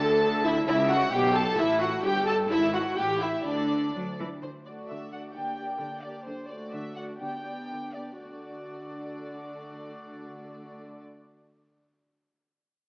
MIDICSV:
0, 0, Header, 1, 6, 480
1, 0, Start_track
1, 0, Key_signature, 2, "major"
1, 0, Tempo, 454890
1, 718, Time_signature, 2, 2, 24, 8
1, 2642, Tempo, 481155
1, 4562, Tempo, 462606
1, 7442, Tempo, 498339
1, 12909, End_track
2, 0, Start_track
2, 0, Title_t, "Violin section"
2, 0, Program_c, 0, 48
2, 0, Note_on_c, 0, 81, 127
2, 461, Note_off_c, 0, 81, 0
2, 483, Note_on_c, 0, 76, 127
2, 699, Note_off_c, 0, 76, 0
2, 712, Note_on_c, 0, 76, 127
2, 947, Note_off_c, 0, 76, 0
2, 947, Note_on_c, 0, 78, 127
2, 1188, Note_off_c, 0, 78, 0
2, 1198, Note_on_c, 0, 79, 127
2, 1433, Note_off_c, 0, 79, 0
2, 1439, Note_on_c, 0, 81, 127
2, 1667, Note_on_c, 0, 76, 127
2, 1676, Note_off_c, 0, 81, 0
2, 1911, Note_on_c, 0, 78, 111
2, 1912, Note_off_c, 0, 76, 0
2, 2155, Note_off_c, 0, 78, 0
2, 2155, Note_on_c, 0, 79, 127
2, 2394, Note_off_c, 0, 79, 0
2, 2403, Note_on_c, 0, 81, 121
2, 2488, Note_off_c, 0, 81, 0
2, 2651, Note_on_c, 0, 76, 127
2, 2876, Note_off_c, 0, 76, 0
2, 2885, Note_on_c, 0, 78, 104
2, 3113, Note_on_c, 0, 79, 117
2, 3116, Note_off_c, 0, 78, 0
2, 3351, Note_off_c, 0, 79, 0
2, 3363, Note_on_c, 0, 76, 104
2, 3594, Note_on_c, 0, 74, 105
2, 3599, Note_off_c, 0, 76, 0
2, 4310, Note_off_c, 0, 74, 0
2, 4563, Note_on_c, 0, 72, 65
2, 4646, Note_off_c, 0, 72, 0
2, 4803, Note_on_c, 0, 74, 46
2, 4886, Note_off_c, 0, 74, 0
2, 5043, Note_on_c, 0, 76, 64
2, 5282, Note_off_c, 0, 76, 0
2, 5284, Note_on_c, 0, 78, 60
2, 5367, Note_off_c, 0, 78, 0
2, 5518, Note_on_c, 0, 79, 73
2, 6215, Note_off_c, 0, 79, 0
2, 6230, Note_on_c, 0, 74, 63
2, 6467, Note_on_c, 0, 72, 70
2, 6469, Note_off_c, 0, 74, 0
2, 6703, Note_off_c, 0, 72, 0
2, 6713, Note_on_c, 0, 74, 59
2, 6948, Note_on_c, 0, 76, 74
2, 6953, Note_off_c, 0, 74, 0
2, 7193, Note_on_c, 0, 78, 61
2, 7194, Note_off_c, 0, 76, 0
2, 7276, Note_off_c, 0, 78, 0
2, 7430, Note_on_c, 0, 79, 76
2, 8141, Note_off_c, 0, 79, 0
2, 8156, Note_on_c, 0, 74, 55
2, 8397, Note_off_c, 0, 74, 0
2, 8408, Note_on_c, 0, 74, 53
2, 11070, Note_off_c, 0, 74, 0
2, 12909, End_track
3, 0, Start_track
3, 0, Title_t, "Violin section"
3, 0, Program_c, 1, 48
3, 0, Note_on_c, 1, 69, 127
3, 468, Note_off_c, 1, 69, 0
3, 488, Note_on_c, 1, 64, 116
3, 572, Note_off_c, 1, 64, 0
3, 718, Note_on_c, 1, 64, 125
3, 802, Note_off_c, 1, 64, 0
3, 947, Note_on_c, 1, 66, 124
3, 1178, Note_on_c, 1, 67, 127
3, 1184, Note_off_c, 1, 66, 0
3, 1419, Note_off_c, 1, 67, 0
3, 1429, Note_on_c, 1, 69, 127
3, 1670, Note_off_c, 1, 69, 0
3, 1675, Note_on_c, 1, 64, 127
3, 1909, Note_on_c, 1, 66, 106
3, 1916, Note_off_c, 1, 64, 0
3, 2150, Note_on_c, 1, 67, 127
3, 2154, Note_off_c, 1, 66, 0
3, 2396, Note_off_c, 1, 67, 0
3, 2396, Note_on_c, 1, 69, 120
3, 2480, Note_off_c, 1, 69, 0
3, 2639, Note_on_c, 1, 64, 125
3, 2869, Note_off_c, 1, 64, 0
3, 2878, Note_on_c, 1, 66, 105
3, 3113, Note_off_c, 1, 66, 0
3, 3113, Note_on_c, 1, 67, 122
3, 3346, Note_off_c, 1, 67, 0
3, 3346, Note_on_c, 1, 64, 97
3, 3591, Note_off_c, 1, 64, 0
3, 3591, Note_on_c, 1, 62, 94
3, 4323, Note_off_c, 1, 62, 0
3, 4799, Note_on_c, 1, 66, 37
3, 4801, Note_on_c, 1, 74, 38
3, 5274, Note_off_c, 1, 66, 0
3, 5278, Note_off_c, 1, 74, 0
3, 5286, Note_on_c, 1, 66, 41
3, 5290, Note_on_c, 1, 74, 41
3, 5506, Note_off_c, 1, 74, 0
3, 5511, Note_on_c, 1, 67, 41
3, 5519, Note_on_c, 1, 74, 40
3, 5522, Note_off_c, 1, 66, 0
3, 5747, Note_off_c, 1, 74, 0
3, 5751, Note_off_c, 1, 67, 0
3, 5760, Note_on_c, 1, 74, 42
3, 5764, Note_on_c, 1, 67, 38
3, 6213, Note_off_c, 1, 67, 0
3, 6222, Note_off_c, 1, 74, 0
3, 6225, Note_on_c, 1, 67, 42
3, 6234, Note_on_c, 1, 74, 38
3, 6461, Note_off_c, 1, 67, 0
3, 6466, Note_off_c, 1, 74, 0
3, 6700, Note_on_c, 1, 74, 44
3, 6701, Note_on_c, 1, 66, 39
3, 7181, Note_off_c, 1, 66, 0
3, 7181, Note_off_c, 1, 74, 0
3, 7197, Note_on_c, 1, 66, 42
3, 7197, Note_on_c, 1, 74, 44
3, 7414, Note_off_c, 1, 74, 0
3, 7426, Note_on_c, 1, 74, 41
3, 7433, Note_on_c, 1, 67, 39
3, 7439, Note_off_c, 1, 66, 0
3, 7652, Note_off_c, 1, 74, 0
3, 7653, Note_off_c, 1, 67, 0
3, 7664, Note_on_c, 1, 74, 38
3, 7665, Note_on_c, 1, 67, 35
3, 8135, Note_off_c, 1, 74, 0
3, 8140, Note_off_c, 1, 67, 0
3, 8147, Note_on_c, 1, 74, 33
3, 8152, Note_on_c, 1, 67, 31
3, 8385, Note_off_c, 1, 74, 0
3, 8396, Note_on_c, 1, 66, 41
3, 8396, Note_on_c, 1, 74, 39
3, 8398, Note_off_c, 1, 67, 0
3, 11064, Note_off_c, 1, 66, 0
3, 11064, Note_off_c, 1, 74, 0
3, 12909, End_track
4, 0, Start_track
4, 0, Title_t, "Viola section"
4, 0, Program_c, 2, 48
4, 0, Note_on_c, 2, 69, 127
4, 475, Note_on_c, 2, 64, 109
4, 478, Note_off_c, 2, 69, 0
4, 700, Note_off_c, 2, 64, 0
4, 713, Note_on_c, 2, 64, 127
4, 944, Note_on_c, 2, 66, 105
4, 947, Note_off_c, 2, 64, 0
4, 1028, Note_off_c, 2, 66, 0
4, 1181, Note_on_c, 2, 67, 123
4, 1418, Note_on_c, 2, 69, 110
4, 1420, Note_off_c, 2, 67, 0
4, 1656, Note_on_c, 2, 64, 116
4, 1660, Note_off_c, 2, 69, 0
4, 1904, Note_on_c, 2, 66, 99
4, 1907, Note_off_c, 2, 64, 0
4, 1988, Note_off_c, 2, 66, 0
4, 2157, Note_on_c, 2, 67, 125
4, 2395, Note_off_c, 2, 67, 0
4, 2397, Note_on_c, 2, 69, 116
4, 2641, Note_on_c, 2, 64, 114
4, 2642, Note_off_c, 2, 69, 0
4, 2869, Note_on_c, 2, 66, 99
4, 2875, Note_off_c, 2, 64, 0
4, 3108, Note_off_c, 2, 66, 0
4, 3108, Note_on_c, 2, 67, 110
4, 3347, Note_on_c, 2, 64, 89
4, 3349, Note_off_c, 2, 67, 0
4, 3591, Note_off_c, 2, 64, 0
4, 3593, Note_on_c, 2, 62, 74
4, 4309, Note_off_c, 2, 62, 0
4, 4808, Note_on_c, 2, 57, 36
4, 4811, Note_on_c, 2, 62, 39
4, 5273, Note_off_c, 2, 62, 0
4, 5276, Note_off_c, 2, 57, 0
4, 5286, Note_on_c, 2, 62, 35
4, 5288, Note_on_c, 2, 57, 30
4, 5517, Note_off_c, 2, 62, 0
4, 5523, Note_off_c, 2, 57, 0
4, 5528, Note_on_c, 2, 58, 35
4, 5530, Note_on_c, 2, 62, 37
4, 5760, Note_off_c, 2, 58, 0
4, 5761, Note_off_c, 2, 62, 0
4, 5771, Note_on_c, 2, 58, 37
4, 5772, Note_on_c, 2, 62, 41
4, 6223, Note_off_c, 2, 58, 0
4, 6223, Note_off_c, 2, 62, 0
4, 6235, Note_on_c, 2, 62, 35
4, 6236, Note_on_c, 2, 58, 36
4, 6467, Note_off_c, 2, 58, 0
4, 6467, Note_off_c, 2, 62, 0
4, 6699, Note_on_c, 2, 57, 43
4, 6702, Note_on_c, 2, 62, 37
4, 7180, Note_off_c, 2, 57, 0
4, 7181, Note_off_c, 2, 62, 0
4, 7194, Note_on_c, 2, 57, 36
4, 7195, Note_on_c, 2, 62, 38
4, 7432, Note_off_c, 2, 62, 0
4, 7437, Note_off_c, 2, 57, 0
4, 7445, Note_on_c, 2, 62, 32
4, 7446, Note_on_c, 2, 59, 35
4, 7662, Note_off_c, 2, 59, 0
4, 7662, Note_off_c, 2, 62, 0
4, 7673, Note_on_c, 2, 59, 37
4, 7673, Note_on_c, 2, 62, 37
4, 8150, Note_off_c, 2, 59, 0
4, 8150, Note_off_c, 2, 62, 0
4, 8164, Note_on_c, 2, 62, 28
4, 8165, Note_on_c, 2, 59, 27
4, 8394, Note_off_c, 2, 62, 0
4, 8404, Note_off_c, 2, 59, 0
4, 8405, Note_on_c, 2, 62, 38
4, 8408, Note_on_c, 2, 57, 32
4, 11068, Note_off_c, 2, 62, 0
4, 11070, Note_off_c, 2, 57, 0
4, 12909, End_track
5, 0, Start_track
5, 0, Title_t, "Cello section"
5, 0, Program_c, 3, 48
5, 0, Note_on_c, 3, 50, 102
5, 699, Note_off_c, 3, 50, 0
5, 714, Note_on_c, 3, 49, 123
5, 1134, Note_off_c, 3, 49, 0
5, 1191, Note_on_c, 3, 47, 107
5, 1614, Note_off_c, 3, 47, 0
5, 1664, Note_on_c, 3, 45, 117
5, 2096, Note_off_c, 3, 45, 0
5, 2149, Note_on_c, 3, 43, 110
5, 2581, Note_off_c, 3, 43, 0
5, 2638, Note_on_c, 3, 44, 109
5, 3054, Note_off_c, 3, 44, 0
5, 3111, Note_on_c, 3, 45, 91
5, 3535, Note_off_c, 3, 45, 0
5, 3589, Note_on_c, 3, 50, 88
5, 4021, Note_off_c, 3, 50, 0
5, 4084, Note_on_c, 3, 54, 85
5, 4164, Note_off_c, 3, 54, 0
5, 4327, Note_on_c, 3, 52, 85
5, 4407, Note_off_c, 3, 52, 0
5, 4561, Note_on_c, 3, 50, 57
5, 4969, Note_off_c, 3, 50, 0
5, 5057, Note_on_c, 3, 50, 52
5, 5455, Note_off_c, 3, 50, 0
5, 5529, Note_on_c, 3, 50, 50
5, 5924, Note_off_c, 3, 50, 0
5, 5999, Note_on_c, 3, 50, 59
5, 6394, Note_off_c, 3, 50, 0
5, 6474, Note_on_c, 3, 50, 55
5, 6874, Note_off_c, 3, 50, 0
5, 6954, Note_on_c, 3, 50, 62
5, 7364, Note_off_c, 3, 50, 0
5, 7448, Note_on_c, 3, 50, 54
5, 7841, Note_off_c, 3, 50, 0
5, 7922, Note_on_c, 3, 50, 47
5, 8331, Note_off_c, 3, 50, 0
5, 8412, Note_on_c, 3, 50, 38
5, 11072, Note_off_c, 3, 50, 0
5, 12909, End_track
6, 0, Start_track
6, 0, Title_t, "Double bass section"
6, 0, Program_c, 4, 48
6, 0, Note_on_c, 4, 38, 114
6, 700, Note_off_c, 4, 38, 0
6, 717, Note_on_c, 4, 37, 123
6, 1136, Note_off_c, 4, 37, 0
6, 1192, Note_on_c, 4, 35, 115
6, 1614, Note_off_c, 4, 35, 0
6, 1671, Note_on_c, 4, 33, 113
6, 2099, Note_off_c, 4, 33, 0
6, 2151, Note_on_c, 4, 31, 104
6, 2582, Note_off_c, 4, 31, 0
6, 2642, Note_on_c, 4, 32, 115
6, 3056, Note_off_c, 4, 32, 0
6, 3112, Note_on_c, 4, 33, 93
6, 3535, Note_off_c, 4, 33, 0
6, 3593, Note_on_c, 4, 38, 93
6, 4023, Note_off_c, 4, 38, 0
6, 4077, Note_on_c, 4, 38, 76
6, 4506, Note_off_c, 4, 38, 0
6, 12909, End_track
0, 0, End_of_file